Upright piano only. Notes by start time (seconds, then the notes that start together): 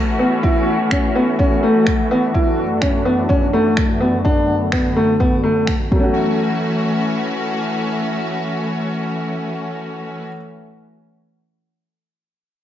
0.19 B3
0.43 E4
0.91 C#4
1.15 B3
1.39 C#4
1.63 A3
2.11 B3
2.34 E4
2.82 C#4
3.05 B3
3.29 C#4
3.53 A3
4.00 B3
4.25 D4
4.72 B3
4.96 A3
5.20 B3
5.44 A3
5.91 F#3
5.96 A3 C#4
6.03 F#4